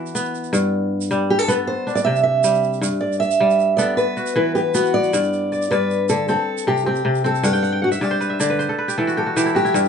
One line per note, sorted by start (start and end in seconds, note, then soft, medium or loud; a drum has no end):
0.00 0.58 E3 medium
0.00 0.15 B3 medium
0.00 0.59 F#4 medium
0.00 0.52 A4 medium
0.06 shaker soft
0.15 1.48 B3 medium
0.15 shaker medium
0.35 shaker soft
0.44 shaker soft
0.53 1.73 G2 medium
0.53 shaker medium
1.01 shaker soft
1.11 1.73 G3 medium
1.11 shaker soft
1.30 1.39 G4 medium
1.39 1.49 A4 medium
1.48 2.12 B3 medium
1.48 2.80 A4 medium
1.48 1.53 B4 medium
1.48 shaker medium
1.67 1.95 C5 medium
1.87 3.55 D4 medium
1.87 shaker soft
1.95 2.04 D5 medium
1.95 shaker soft
2.05 2.87 C3 medium
2.05 2.22 E5 loud
2.16 shaker soft
2.23 2.78 E5 medium
2.44 2.87 G3 medium
2.44 shaker medium
2.63 shaker soft
2.73 shaker soft
2.81 4.03 G2 medium
2.81 shaker medium
3.01 3.19 D5 medium
3.12 shaker soft
3.20 3.76 E5 loud
3.20 shaker soft
3.31 shaker soft
3.40 4.03 G3 medium
3.50 shaker soft
3.60 shaker soft
3.77 4.74 B3 medium
3.77 5.10 A4 medium
3.77 3.95 D5 medium
3.77 shaker medium
3.97 4.35 B4 medium
3.97 shaker soft
4.17 5.19 F#4 medium
4.17 shaker soft
4.26 shaker soft
4.36 5.18 E3 medium
4.36 4.54 B4 medium
4.55 4.60 G4 medium
4.55 4.94 B4 medium
4.55 shaker soft
4.75 6.35 B3 medium
4.75 5.10 F#4 medium
4.75 shaker medium
4.85 shaker soft
4.94 5.70 D5 loud
5.03 shaker soft
5.13 5.70 G2 medium
5.13 shaker medium
5.23 shaker soft
5.33 shaker soft
5.52 5.71 D5 medium
5.52 shaker soft
5.62 shaker soft
5.71 6.33 G2 medium
5.71 6.09 B4 medium
5.71 6.82 D5 medium
5.71 shaker soft
5.91 shaker soft
6.09 6.33 D3 medium
6.09 6.28 A4 medium
6.09 shaker medium
6.28 6.86 C4 medium
6.28 6.67 A4 medium
6.28 shaker soft
6.58 shaker soft
6.67 7.04 C3 medium
6.67 6.85 G4 medium
6.77 shaker soft
6.86 7.24 C4 medium
6.86 7.22 G4 medium
6.96 shaker soft
7.05 7.49 C3 medium
7.15 shaker soft
7.24 8.27 C4 medium
7.24 7.44 A4 medium
7.24 shaker soft
7.35 shaker soft
7.43 8.00 G2 medium
7.43 7.84 G4 medium
7.43 7.62 F#5 medium
7.43 shaker medium
7.53 7.72 G5 medium
7.53 shaker soft
7.63 7.81 F#5 medium
7.63 shaker soft
7.72 8.66 G5 medium
7.82 7.89 F#4 medium
7.82 8.07 F#5 medium
7.92 8.29 E5 medium
7.92 shaker soft
8.01 8.65 G2 medium
8.01 8.46 G4 medium
8.01 8.40 D5 medium
8.01 shaker soft
8.11 8.56 C5 medium
8.21 8.49 B4 medium
8.21 shaker soft
8.30 9.33 E5 medium
8.40 8.65 D3 medium
8.40 9.51 D5 medium
8.40 shaker medium
8.50 8.78 B4 medium
8.59 8.84 C5 medium
8.59 shaker soft
8.69 8.97 A4 medium
8.78 9.88 B4 medium
8.88 9.13 G4 medium
8.88 shaker soft
8.98 9.35 E3 medium
8.98 9.88 A4 medium
9.07 9.26 F#4 medium
9.07 shaker soft
9.17 9.36 G4 medium
9.17 9.56 A4 medium
9.26 9.54 F#4 medium
9.36 9.80 E3 medium
9.36 9.61 G4 medium
9.36 shaker medium
9.46 9.64 E4 medium
9.46 shaker soft
9.55 9.80 F#4 medium
9.55 9.88 G4 medium
9.55 shaker soft
9.65 9.88 E4 medium
9.65 shaker soft
9.74 9.88 G2 medium
9.74 shaker medium
9.85 shaker soft